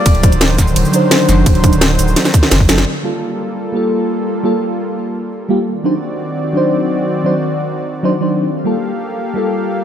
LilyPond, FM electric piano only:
\new Staff \with { instrumentName = "FM electric piano" } { \time 4/4 \key g \minor \tempo 4 = 171 r8 <fis d' ees' c''>16 r4. r16 <fis d' ees' c''>4.~ | <fis d' ees' c''>8 <fis d' ees' c''>16 r2 r8. <fis d' ees' a'>16 r16 | r8 <g bes f' a'>16 r4. r16 <g bes f' a'>4.~ | <g bes f' a'>8 <g bes f' a'>16 r2 r8. <g bes f' g'>16 r16 |
r8 <fis d' ees' c''>16 r4. r16 <fis d' ees' c''>4.~ | <fis d' ees' c''>8 <fis d' ees' c''>16 r2 <fis d' ees' c''>16 r16 <fis d' ees' c''>8. | r8 <g bes f' a'>16 r4. r16 <g bes f' a'>4. | }